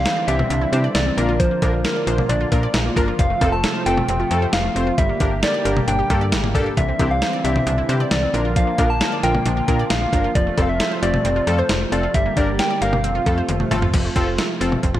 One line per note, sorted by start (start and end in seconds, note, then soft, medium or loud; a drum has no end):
0.00 1.16 D3 medium
0.00 1.16 E3 medium
0.00 1.16 G3 medium
0.00 1.16 C4 medium
0.00 0.29 F5 loud
0.05 0.15 C5 medium
0.05 snare loud
0.05 closed hi-hat medium
0.17 0.27 D5 medium
0.28 0.43 C2 loud
0.28 0.38 E3 medium
0.28 0.40 C4 medium
0.28 0.40 D4 medium
0.28 0.40 E4 medium
0.28 0.40 G4 medium
0.28 0.96 E5 loud
0.28 closed hi-hat medium
0.39 0.49 C4 medium
0.39 mid tom loud
0.50 0.66 C2 loud
0.50 0.60 D4 loud
0.50 closed hi-hat medium
0.61 0.71 E4 medium
0.73 0.88 C3 loud
0.73 0.84 C4 medium
0.73 0.84 D4 medium
0.73 0.84 E4 medium
0.73 0.84 G4 medium
0.73 0.83 C5 medium
0.73 closed hi-hat medium
0.84 0.94 D5 medium
0.95 1.11 C2 loud
0.95 1.05 E3 medium
0.95 1.41 D5 loud
0.95 snare loud
0.95 closed hi-hat medium
1.06 1.16 C4 medium
1.17 1.49 A#1 loud
1.17 3.17 D3 medium
1.17 4.94 F3 medium
1.17 1.53 A#3 medium
1.17 3.17 A#3 medium
1.17 1.53 D4 medium
1.17 1.27 D4 medium
1.17 4.94 F4 medium
1.17 1.53 F4 medium
1.17 1.53 A#4 medium
1.17 closed hi-hat medium
1.29 1.39 F4 medium
1.40 1.50 F3 loud
1.40 1.86 C5 loud
1.40 kick loud
1.40 closed hi-hat medium
1.51 1.61 A#3 medium
1.62 1.86 A#1 loud
1.62 1.74 A#3 medium
1.62 1.74 D4 medium
1.62 1.72 D4 medium
1.62 1.74 F4 medium
1.62 1.74 A#4 medium
1.62 kick medium
1.62 closed hi-hat medium
1.62 cowbell medium
1.84 2.31 A#4 medium
1.84 1.95 A#4 medium
1.84 snare loud
1.84 closed hi-hat medium
1.96 2.06 D5 medium
2.07 2.23 A#1 loud
2.07 2.17 F3 medium
2.07 2.19 A#3 medium
2.07 2.19 D4 medium
2.07 2.19 F4 medium
2.07 2.19 C5 medium
2.07 closed hi-hat medium
2.18 2.28 A#3 medium
2.18 mid tom loud
2.29 2.45 A#1 loud
2.29 2.39 D4 loud
2.29 2.96 D5 medium
2.29 closed hi-hat medium
2.41 2.51 F4 medium
2.52 2.68 A#2 medium
2.52 2.64 A#3 medium
2.52 2.64 D4 medium
2.52 2.64 F4 medium
2.52 2.62 A#4 medium
2.52 2.64 A#4 medium
2.52 kick medium
2.52 closed hi-hat medium
2.63 2.73 D5 medium
2.74 2.90 A#1 loud
2.74 2.84 F3 medium
2.74 snare loud
2.74 closed hi-hat medium
2.85 2.95 A#3 medium
2.96 3.12 G1 loud
2.96 3.08 A#3 medium
2.96 3.08 D4 medium
2.96 3.07 D4 medium
2.96 3.08 F4 medium
2.96 3.08 A#4 loud
2.96 kick loud
2.96 closed hi-hat medium
3.08 3.18 F4 medium
3.19 3.35 F1 loud
3.19 4.96 C3 medium
3.19 3.29 F3 medium
3.19 4.96 A3 medium
3.19 3.54 F5 loud
3.19 kick loud
3.19 closed hi-hat medium
3.30 3.40 A3 medium
3.41 3.65 F1 loud
3.41 3.53 A3 medium
3.41 3.51 C4 medium
3.41 3.53 C4 medium
3.41 3.53 F4 medium
3.41 3.53 A4 medium
3.41 kick medium
3.41 closed hi-hat medium
3.41 cowbell medium
3.52 3.85 A5 loud
3.64 3.74 A4 medium
3.64 snare loud
3.64 closed hi-hat medium
3.75 3.85 C5 medium
3.86 4.02 F1 loud
3.86 3.96 F3 medium
3.86 3.98 A3 medium
3.86 3.98 C4 medium
3.86 3.98 F4 medium
3.86 3.98 A4 medium
3.86 4.55 G5 loud
3.86 closed hi-hat medium
3.97 4.07 A3 medium
3.97 mid tom medium
4.08 4.24 F1 loud
4.08 4.18 C4 medium
4.08 closed hi-hat medium
4.20 4.30 F4 medium
4.31 4.46 F2 loud
4.31 4.43 A3 medium
4.31 4.43 C4 medium
4.31 4.43 F4 medium
4.31 4.41 A4 medium
4.31 4.43 A4 medium
4.31 closed hi-hat medium
4.42 4.52 C5 medium
4.53 4.69 F1 loud
4.53 4.63 F3 medium
4.53 4.99 F5 loud
4.53 snare loud
4.53 closed hi-hat medium
4.64 4.74 A3 medium
4.76 4.91 F1 medium
4.76 4.87 A3 medium
4.76 4.87 C4 medium
4.76 4.86 C4 medium
4.76 4.87 F4 medium
4.76 4.87 C5 medium
4.76 closed hi-hat medium
4.87 4.97 F4 medium
4.98 5.14 G1 loud
4.98 6.75 D3 medium
4.98 5.08 G3 loud
4.98 8.30 G3 medium
4.98 6.75 A#3 medium
4.98 6.75 G4 medium
4.98 5.44 E5 loud
4.98 kick loud
4.98 closed hi-hat medium
5.09 5.19 A#3 medium
5.20 5.44 G1 loud
5.20 5.32 A#3 medium
5.20 5.30 D4 medium
5.20 5.32 D4 medium
5.20 5.32 G4 medium
5.20 5.32 A#4 medium
5.20 kick medium
5.20 closed hi-hat medium
5.43 5.53 A#4 medium
5.43 5.89 D5 medium
5.43 snare loud
5.43 closed hi-hat medium
5.54 5.64 D5 medium
5.65 5.81 G1 medium
5.65 5.75 G3 medium
5.65 5.77 A#3 medium
5.65 5.77 D4 medium
5.65 5.77 G4 medium
5.65 5.77 A#4 medium
5.65 closed hi-hat medium
5.76 5.86 A#3 medium
5.76 mid tom medium
5.88 6.03 G1 loud
5.88 5.98 D4 loud
5.88 6.55 G5 medium
5.88 closed hi-hat medium
5.99 6.09 G4 medium
6.10 6.34 G2 loud
6.10 6.22 A#3 medium
6.10 6.22 D4 medium
6.10 6.22 G4 medium
6.10 6.22 A4 medium
6.10 6.20 A#4 medium
6.10 kick medium
6.10 closed hi-hat medium
6.21 6.31 D5 medium
6.32 6.56 G1 loud
6.32 6.42 G3 medium
6.32 snare loud
6.32 closed hi-hat medium
6.43 6.54 A#3 medium
6.43 mid tom loud
6.55 6.70 A#1 medium
6.55 6.67 A#3 medium
6.55 6.67 D4 medium
6.55 6.65 D4 medium
6.55 6.66 G4 medium
6.55 6.67 A4 loud
6.55 kick loud
6.55 closed hi-hat medium
6.55 mid tom medium
6.66 6.76 G4 medium
6.77 6.93 C2 loud
6.77 10.32 D3 medium
6.77 6.87 E3 loud
6.77 8.32 E3 medium
6.77 8.32 C4 medium
6.77 7.12 E5 loud
6.77 kick loud
6.77 closed hi-hat medium
6.88 6.98 C4 medium
6.99 7.23 C2 loud
6.99 7.11 C4 medium
6.99 7.11 D4 medium
6.99 7.10 D4 medium
6.99 7.11 E4 medium
6.99 7.11 G4 medium
6.99 kick medium
6.99 closed hi-hat medium
6.99 cowbell medium
7.11 7.46 F5 loud
7.22 7.32 C5 medium
7.22 snare loud
7.22 closed hi-hat medium
7.33 7.43 D5 medium
7.44 7.60 C2 loud
7.44 7.54 E3 medium
7.44 7.56 C4 medium
7.44 7.56 D4 medium
7.44 7.56 E4 medium
7.44 7.56 G4 medium
7.44 8.13 E5 loud
7.44 closed hi-hat medium
7.56 7.66 C4 medium
7.56 mid tom loud
7.67 7.82 C2 loud
7.67 7.77 D4 loud
7.67 closed hi-hat medium
7.78 7.88 E4 medium
7.89 8.05 C3 loud
7.89 8.01 C4 medium
7.89 8.01 D4 medium
7.89 8.01 E4 medium
7.89 8.01 G4 medium
7.89 7.99 C5 medium
7.89 closed hi-hat medium
8.00 8.10 D5 medium
8.11 8.27 C2 loud
8.11 8.21 E3 medium
8.11 8.56 D5 loud
8.11 snare loud
8.11 closed hi-hat medium
8.23 8.33 C4 medium
8.34 8.65 A#1 loud
8.34 12.11 F3 medium
8.34 8.70 A#3 medium
8.34 10.33 A#3 medium
8.34 8.70 D4 medium
8.34 8.44 D4 medium
8.34 8.70 F4 medium
8.34 12.11 F4 medium
8.34 8.70 A#4 medium
8.34 closed hi-hat medium
8.45 8.55 F4 medium
8.56 8.66 F3 loud
8.56 8.91 F5 loud
8.56 kick loud
8.56 closed hi-hat medium
8.67 8.77 A#3 medium
8.78 9.02 A#1 loud
8.78 8.90 A#3 medium
8.78 8.89 D4 medium
8.78 8.90 D4 medium
8.78 8.90 F4 medium
8.78 8.90 A#4 medium
8.78 kick medium
8.78 closed hi-hat medium
8.78 cowbell medium
8.90 9.25 A5 loud
9.01 9.11 A#4 medium
9.01 snare loud
9.01 closed hi-hat medium
9.12 9.22 D5 medium
9.23 9.39 A#1 loud
9.23 9.33 F3 medium
9.23 9.35 A#3 medium
9.23 9.35 D4 medium
9.23 9.35 F4 medium
9.23 9.35 A#4 medium
9.23 9.90 G5 loud
9.23 closed hi-hat medium
9.34 9.44 A#3 medium
9.34 mid tom loud
9.46 9.61 A#1 loud
9.46 9.56 D4 loud
9.46 closed hi-hat medium
9.57 9.67 F4 medium
9.68 9.84 A#2 medium
9.68 9.80 A#3 medium
9.68 9.80 D4 medium
9.68 9.80 F4 medium
9.68 9.80 A#4 medium
9.68 9.78 A#4 medium
9.68 kick medium
9.68 closed hi-hat medium
9.79 9.89 D5 medium
9.90 10.06 A#1 loud
9.90 10.01 F3 medium
9.90 10.37 F5 loud
9.90 snare loud
9.90 closed hi-hat medium
10.02 10.12 A#3 medium
10.13 10.28 G1 loud
10.13 10.25 A#3 medium
10.13 10.25 D4 medium
10.13 10.23 D4 medium
10.13 10.25 F4 medium
10.13 10.25 A#4 medium
10.13 kick loud
10.13 closed hi-hat medium
10.24 10.34 F4 medium
10.35 10.51 F1 loud
10.35 12.13 C3 medium
10.35 10.45 F3 loud
10.35 12.13 A3 medium
10.35 10.61 D5 loud
10.35 kick loud
10.35 closed hi-hat medium
10.47 10.57 A3 medium
10.57 10.81 F1 loud
10.57 10.69 A3 medium
10.57 10.69 C4 medium
10.57 10.68 C4 medium
10.57 10.69 F4 medium
10.57 10.69 A4 medium
10.57 kick medium
10.57 closed hi-hat medium
10.57 cowbell medium
10.62 10.71 F5 medium
10.69 11.02 E5 loud
10.80 10.90 A4 medium
10.80 snare loud
10.80 closed hi-hat medium
10.91 11.01 C5 medium
11.02 11.18 F1 loud
11.02 11.12 F3 medium
11.02 11.14 A3 medium
11.02 11.14 C4 medium
11.02 11.14 F4 medium
11.02 11.14 G4 medium
11.02 11.60 D5 loud
11.02 closed hi-hat medium
11.14 11.24 A3 medium
11.14 mid tom medium
11.25 11.41 F1 loud
11.25 11.35 C4 loud
11.25 closed hi-hat medium
11.36 11.46 F4 medium
11.47 11.63 F2 loud
11.47 11.59 A3 medium
11.47 11.59 C4 medium
11.47 11.59 F4 medium
11.47 11.59 A4 medium
11.47 11.57 A4 medium
11.47 closed hi-hat medium
11.58 11.68 C5 medium
11.58 11.92 C5 medium
11.69 11.85 F1 loud
11.69 11.80 F3 medium
11.69 snare loud
11.69 closed hi-hat medium
11.81 11.91 A3 medium
11.92 12.08 F1 medium
11.92 12.04 A3 medium
11.92 12.04 C4 medium
11.92 12.02 C4 medium
11.92 12.04 F4 medium
11.92 12.04 A4 medium
11.92 12.16 D5 medium
11.92 closed hi-hat medium
12.03 12.13 F4 medium
12.14 12.30 G1 loud
12.14 13.03 D3 medium
12.14 13.03 G3 medium
12.14 12.24 G3 loud
12.14 13.03 A#3 medium
12.14 13.03 G4 medium
12.14 12.39 E5 loud
12.14 kick loud
12.14 closed hi-hat medium
12.26 12.36 A#3 medium
12.37 12.60 G1 loud
12.37 12.49 A#3 medium
12.37 12.49 D4 medium
12.37 12.47 D4 medium
12.37 12.49 G4 medium
12.37 12.49 A#4 medium
12.37 12.59 D5 medium
12.37 kick medium
12.37 closed hi-hat medium
12.59 12.69 A#4 loud
12.59 12.80 G5 loud
12.59 snare loud
12.59 closed hi-hat medium
12.70 12.80 D5 medium
12.81 13.06 G1 medium
12.81 12.92 G3 medium
12.81 12.93 A#3 medium
12.81 12.93 D4 medium
12.81 12.93 G4 medium
12.81 12.93 A#4 medium
12.81 13.67 F5 loud
12.81 closed hi-hat medium
12.93 13.03 A#3 medium
12.93 mid tom loud
13.04 13.20 F1 loud
13.04 13.92 C3 medium
13.04 13.93 F3 medium
13.04 13.92 A3 medium
13.04 13.14 C4 medium
13.04 13.92 F4 medium
13.04 closed hi-hat medium
13.15 13.25 F4 medium
13.26 13.42 F2 loud
13.26 13.38 A3 medium
13.26 13.38 C4 medium
13.26 13.38 F4 medium
13.26 13.38 A4 medium
13.26 13.36 A4 medium
13.26 kick loud
13.26 closed hi-hat medium
13.38 13.48 C5 medium
13.49 13.64 F1 loud
13.49 13.59 F3 medium
13.49 closed hi-hat medium
13.49 high tom medium
13.60 13.70 A3 medium
13.60 mid tom medium
13.71 13.87 G1 loud
13.71 13.83 A3 medium
13.71 13.83 C4 medium
13.71 13.81 C4 medium
13.71 13.83 F4 medium
13.71 13.83 A4 loud
13.71 closed hi-hat medium
13.71 mid tom loud
13.82 13.92 F4 medium
13.82 floor tom loud
13.94 14.09 F1 loud
13.94 15.00 C3 medium
13.94 14.04 F3 loud
13.94 15.00 F3 medium
13.94 15.00 A3 medium
13.94 15.00 F4 medium
13.94 kick loud
13.94 closed hi-hat medium
13.94 crash medium
14.05 14.15 A3 medium
14.16 14.39 F1 loud
14.16 14.28 C4 medium
14.16 14.26 C4 medium
14.16 14.28 F4 medium
14.16 14.28 A4 loud
14.16 kick medium
14.16 closed hi-hat medium
14.27 14.37 F4 medium
14.38 14.48 A4 medium
14.38 snare loud
14.38 closed hi-hat medium
14.61 14.76 F1 medium
14.61 14.71 F3 medium
14.61 14.72 C4 medium
14.61 14.72 F4 medium
14.61 14.72 A4 medium
14.61 closed hi-hat medium
14.72 14.82 A3 medium
14.72 mid tom medium
14.83 14.99 F1 loud
14.83 14.93 C4 loud
14.83 kick loud
14.83 closed hi-hat medium
14.94 15.00 F4 medium
14.94 mid tom medium